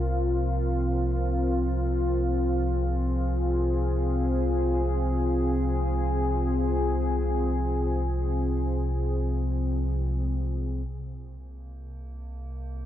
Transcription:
0, 0, Header, 1, 4, 480
1, 0, Start_track
1, 0, Tempo, 500000
1, 12342, End_track
2, 0, Start_track
2, 0, Title_t, "Ambient pad"
2, 0, Program_c, 0, 92
2, 0, Note_on_c, 0, 60, 58
2, 0, Note_on_c, 0, 65, 73
2, 0, Note_on_c, 0, 70, 74
2, 1946, Note_on_c, 0, 68, 83
2, 2298, Note_off_c, 0, 70, 0
2, 10442, Note_off_c, 0, 68, 0
2, 10454, Note_on_c, 0, 48, 65
2, 12187, Note_off_c, 0, 65, 0
2, 12342, Note_off_c, 0, 48, 0
2, 12342, Note_off_c, 0, 60, 0
2, 12342, End_track
3, 0, Start_track
3, 0, Title_t, "Synth drone"
3, 0, Program_c, 1, 95
3, 10446, Note_on_c, 1, 58, 84
3, 12342, Note_off_c, 1, 58, 0
3, 12342, End_track
4, 0, Start_track
4, 0, Title_t, "Synth drone"
4, 0, Program_c, 2, 95
4, 0, Note_on_c, 2, 36, 73
4, 0, Note_on_c, 2, 48, 68
4, 10437, Note_off_c, 2, 36, 0
4, 10443, Note_off_c, 2, 48, 0
4, 10449, Note_on_c, 2, 36, 65
4, 10454, Note_on_c, 2, 48, 62
4, 12342, Note_off_c, 2, 36, 0
4, 12342, Note_off_c, 2, 48, 0
4, 12342, End_track
0, 0, End_of_file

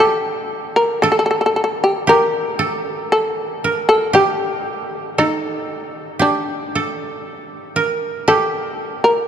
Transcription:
0, 0, Header, 1, 3, 480
1, 0, Start_track
1, 0, Tempo, 1048951
1, 1904, Time_signature, 4, 2, 24, 8
1, 1905, Tempo, 1029160
1, 4291, End_track
2, 0, Start_track
2, 0, Title_t, "Koto"
2, 0, Program_c, 0, 107
2, 0, Note_on_c, 0, 67, 56
2, 473, Note_on_c, 0, 69, 58
2, 911, Note_off_c, 0, 67, 0
2, 948, Note_on_c, 0, 67, 59
2, 1183, Note_off_c, 0, 69, 0
2, 1185, Note_on_c, 0, 69, 57
2, 1667, Note_on_c, 0, 70, 51
2, 1694, Note_off_c, 0, 69, 0
2, 1882, Note_off_c, 0, 67, 0
2, 1891, Note_on_c, 0, 67, 63
2, 2381, Note_on_c, 0, 69, 63
2, 2409, Note_off_c, 0, 70, 0
2, 2842, Note_off_c, 0, 67, 0
2, 2852, Note_on_c, 0, 67, 61
2, 3112, Note_off_c, 0, 69, 0
2, 3114, Note_on_c, 0, 69, 57
2, 3583, Note_on_c, 0, 70, 59
2, 3611, Note_off_c, 0, 69, 0
2, 3804, Note_off_c, 0, 67, 0
2, 3823, Note_on_c, 0, 67, 60
2, 4291, Note_off_c, 0, 67, 0
2, 4291, Note_off_c, 0, 70, 0
2, 4291, End_track
3, 0, Start_track
3, 0, Title_t, "Shamisen"
3, 0, Program_c, 1, 106
3, 0, Note_on_c, 1, 69, 72
3, 335, Note_off_c, 1, 69, 0
3, 349, Note_on_c, 1, 70, 67
3, 461, Note_off_c, 1, 70, 0
3, 468, Note_on_c, 1, 69, 62
3, 500, Note_off_c, 1, 69, 0
3, 512, Note_on_c, 1, 69, 45
3, 540, Note_off_c, 1, 69, 0
3, 545, Note_on_c, 1, 69, 45
3, 571, Note_off_c, 1, 69, 0
3, 576, Note_on_c, 1, 69, 35
3, 593, Note_off_c, 1, 69, 0
3, 598, Note_on_c, 1, 69, 39
3, 634, Note_off_c, 1, 69, 0
3, 645, Note_on_c, 1, 69, 36
3, 663, Note_off_c, 1, 69, 0
3, 668, Note_on_c, 1, 69, 43
3, 703, Note_off_c, 1, 69, 0
3, 715, Note_on_c, 1, 69, 40
3, 744, Note_off_c, 1, 69, 0
3, 750, Note_on_c, 1, 69, 41
3, 779, Note_off_c, 1, 69, 0
3, 841, Note_on_c, 1, 67, 56
3, 947, Note_off_c, 1, 67, 0
3, 957, Note_on_c, 1, 70, 73
3, 1412, Note_off_c, 1, 70, 0
3, 1428, Note_on_c, 1, 69, 64
3, 1767, Note_off_c, 1, 69, 0
3, 1779, Note_on_c, 1, 69, 70
3, 1892, Note_off_c, 1, 69, 0
3, 1898, Note_on_c, 1, 67, 67
3, 2364, Note_off_c, 1, 67, 0
3, 2382, Note_on_c, 1, 63, 59
3, 2849, Note_off_c, 1, 63, 0
3, 2864, Note_on_c, 1, 62, 60
3, 3329, Note_off_c, 1, 62, 0
3, 3825, Note_on_c, 1, 69, 71
3, 4165, Note_off_c, 1, 69, 0
3, 4180, Note_on_c, 1, 70, 68
3, 4287, Note_off_c, 1, 70, 0
3, 4291, End_track
0, 0, End_of_file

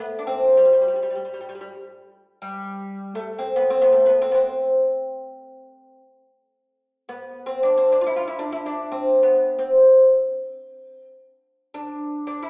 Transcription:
0, 0, Header, 1, 2, 480
1, 0, Start_track
1, 0, Tempo, 500000
1, 11998, End_track
2, 0, Start_track
2, 0, Title_t, "Oud"
2, 0, Program_c, 0, 24
2, 0, Note_on_c, 0, 59, 74
2, 180, Note_on_c, 0, 62, 56
2, 194, Note_off_c, 0, 59, 0
2, 253, Note_off_c, 0, 62, 0
2, 259, Note_on_c, 0, 60, 76
2, 548, Note_on_c, 0, 55, 62
2, 564, Note_off_c, 0, 60, 0
2, 613, Note_off_c, 0, 55, 0
2, 625, Note_on_c, 0, 55, 42
2, 686, Note_off_c, 0, 55, 0
2, 698, Note_on_c, 0, 55, 48
2, 766, Note_off_c, 0, 55, 0
2, 782, Note_on_c, 0, 55, 42
2, 836, Note_off_c, 0, 55, 0
2, 847, Note_on_c, 0, 55, 41
2, 906, Note_off_c, 0, 55, 0
2, 917, Note_on_c, 0, 55, 38
2, 974, Note_off_c, 0, 55, 0
2, 986, Note_on_c, 0, 55, 42
2, 1048, Note_off_c, 0, 55, 0
2, 1060, Note_on_c, 0, 55, 37
2, 1098, Note_off_c, 0, 55, 0
2, 1109, Note_on_c, 0, 55, 40
2, 1189, Note_off_c, 0, 55, 0
2, 1200, Note_on_c, 0, 55, 36
2, 1271, Note_off_c, 0, 55, 0
2, 1284, Note_on_c, 0, 55, 44
2, 1340, Note_off_c, 0, 55, 0
2, 1351, Note_on_c, 0, 55, 38
2, 1418, Note_off_c, 0, 55, 0
2, 1429, Note_on_c, 0, 55, 46
2, 1477, Note_off_c, 0, 55, 0
2, 1488, Note_on_c, 0, 55, 41
2, 1533, Note_off_c, 0, 55, 0
2, 1544, Note_on_c, 0, 55, 49
2, 1624, Note_off_c, 0, 55, 0
2, 2321, Note_on_c, 0, 55, 68
2, 3025, Note_on_c, 0, 57, 71
2, 3052, Note_off_c, 0, 55, 0
2, 3251, Note_on_c, 0, 60, 71
2, 3290, Note_off_c, 0, 57, 0
2, 3418, Note_on_c, 0, 59, 73
2, 3432, Note_off_c, 0, 60, 0
2, 3555, Note_on_c, 0, 60, 74
2, 3564, Note_off_c, 0, 59, 0
2, 3663, Note_on_c, 0, 59, 73
2, 3677, Note_off_c, 0, 60, 0
2, 3762, Note_off_c, 0, 59, 0
2, 3766, Note_on_c, 0, 57, 62
2, 3894, Note_off_c, 0, 57, 0
2, 3898, Note_on_c, 0, 59, 69
2, 4047, Note_on_c, 0, 60, 67
2, 4066, Note_off_c, 0, 59, 0
2, 4122, Note_off_c, 0, 60, 0
2, 4142, Note_on_c, 0, 59, 57
2, 4170, Note_on_c, 0, 60, 66
2, 4209, Note_off_c, 0, 59, 0
2, 5754, Note_off_c, 0, 60, 0
2, 6805, Note_on_c, 0, 59, 59
2, 7164, Note_on_c, 0, 60, 67
2, 7194, Note_off_c, 0, 59, 0
2, 7322, Note_off_c, 0, 60, 0
2, 7326, Note_on_c, 0, 62, 74
2, 7459, Note_off_c, 0, 62, 0
2, 7463, Note_on_c, 0, 60, 68
2, 7598, Note_off_c, 0, 60, 0
2, 7606, Note_on_c, 0, 62, 72
2, 7689, Note_off_c, 0, 62, 0
2, 7693, Note_on_c, 0, 65, 58
2, 7717, Note_off_c, 0, 65, 0
2, 7742, Note_on_c, 0, 64, 71
2, 7834, Note_off_c, 0, 64, 0
2, 7837, Note_on_c, 0, 65, 74
2, 7940, Note_off_c, 0, 65, 0
2, 7945, Note_on_c, 0, 64, 68
2, 8050, Note_off_c, 0, 64, 0
2, 8053, Note_on_c, 0, 62, 70
2, 8177, Note_off_c, 0, 62, 0
2, 8184, Note_on_c, 0, 64, 71
2, 8310, Note_off_c, 0, 64, 0
2, 8314, Note_on_c, 0, 62, 69
2, 8556, Note_off_c, 0, 62, 0
2, 8560, Note_on_c, 0, 60, 72
2, 8836, Note_off_c, 0, 60, 0
2, 8859, Note_on_c, 0, 59, 63
2, 9199, Note_off_c, 0, 59, 0
2, 9203, Note_on_c, 0, 60, 63
2, 10627, Note_off_c, 0, 60, 0
2, 11273, Note_on_c, 0, 62, 72
2, 11768, Note_off_c, 0, 62, 0
2, 11779, Note_on_c, 0, 62, 68
2, 11926, Note_off_c, 0, 62, 0
2, 11929, Note_on_c, 0, 64, 67
2, 11998, Note_off_c, 0, 64, 0
2, 11998, End_track
0, 0, End_of_file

